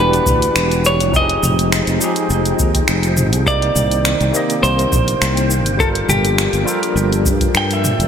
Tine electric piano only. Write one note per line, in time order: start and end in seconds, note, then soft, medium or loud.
0.00 1.16 E3 medium
0.00 1.16 D4 medium
0.00 1.16 F#4 medium
0.00 1.15 G4 medium
1.12 1.97 F3 medium
1.12 1.98 D#4 medium
1.12 1.99 G4 medium
1.17 2.00 G#4 loud
1.99 3.43 F3 medium
1.99 3.44 D#4 medium
1.99 3.44 G4 medium
2.04 3.45 G#4 loud
3.45 4.30 C3 medium
3.45 4.30 A#3 medium
3.45 4.31 D#4 medium
3.49 4.32 D5 loud
4.31 5.75 C3 medium
4.31 5.76 A#3 medium
4.31 5.77 D#4 medium
4.36 5.78 D#5 loud
5.77 6.63 G3 medium
5.77 6.63 F4 medium
5.77 6.64 A4 medium
5.82 6.65 A#4 loud
6.65 8.08 G3 medium
6.65 8.08 F4 medium
6.65 8.08 A4 medium
6.70 8.08 A#4 loud